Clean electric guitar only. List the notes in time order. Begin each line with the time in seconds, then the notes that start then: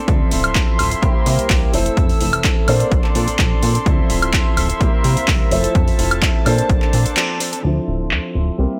0.08 F3 E4 A4
0.31 F3 C4 E4 A4
0.55 F3 C4 E4 A4
0.78 F3 C4 E4 A4
0.91 C4 E4 A4
1.02 G3 A#3 E4 G4
1.14 A#3 E4 G4
1.25 G3 A#3 E4 G4
1.50 G3 A#3 E4 G4
1.73 E3 C4 E4 A4
1.85 C4 E4 A4
1.97 E3 C4 E4 A4
2.20 E3 C4 E4 A4
2.44 E3 C4 E4 A4
2.68 F3 C4 D4 A4
2.80 C4 D4 A4
3.04 C4 D4 A4
3.15 F3 C4 D4 A4
3.27 C4 D4 A4
3.39 F3 C4 D4 A4
3.62 F3 C4 D4 A4
3.74 C4 D4 A4
3.86 F3 C4 E4 A4
4.09 F3 C4 E4 A4
4.33 F3 C4 E4 A4
4.56 F3 C4 E4 A4
4.69 C4 E4 A4
4.80 G3 C4 E4 A#4
4.93 C4 E4 A#4
5.04 G3 C4 E4 A#4
5.16 C4 E4 A#4
5.28 G3 C4 E4 A#4
5.51 C4 E4 A4
5.64 E4 A4
5.75 C4 E4 A4
5.98 C4 E4 A4
6.22 C4 E4 A4
6.45 F3 C4 D4 A4
6.58 C4 D4 A4
6.81 C4 D4 A4
6.93 F3 C4 D4 A4
7.05 C4 D4 A4
7.16 F3 C4 D4 A4
7.40 F3 C4 D4 A4
7.52 C4 D4 A4
7.63 F3 C4 E4 A4
8.58 G3 A#3 E4 G4